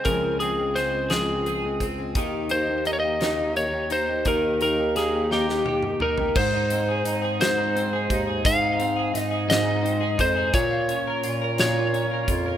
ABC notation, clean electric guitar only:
X:1
M:6/8
L:1/16
Q:3/8=57
K:Ab
V:1 name="Clean electric guitar"
[D,A,CA]2 C2 A,2 C2 A2 C2 | E,2 E2 B,2 E4 E2 | E,2 E2 B,2 E2 G2 E2 | A,, E C A E A A,, E C A E A |
A,, E C A E A A,, E C A E A | B,, F D B F B B,, F D B F B |]